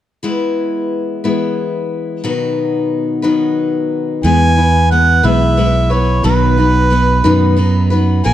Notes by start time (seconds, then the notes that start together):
0.23 E3 G#3 B3 E4 B4
1.24 E3 G#3 B3 E4 B4
2.24 B2 D#3 F#3 B3 D#4 B4
3.22 B2 D#3 F#3 B3 D#4 B4
4.23 E2 E3 G#3 B3 E4 B4 G#5
4.56 B3 E4 B4
4.91 G#3 B3 E4 B4 F#5
5.23 B1 E3 G#3 B3 E4 B4 E5
5.57 G#3 B3 E4 B4
5.90 B3 E4 B4 C#5
6.23 B1 B2 D#3 F#3 B3 D#4 B4
6.57 F#3 B3 D#4 B4
6.90 F#3 B3 D#4 B4
7.24 F#2 B2 D#3 F#3 B3 D#4 B4
7.56 F#3 B3 D#4 B4
7.90 F#3 B3 D#4 B4
8.24 A#1 A#3 C#4 F#4 A#4 G#5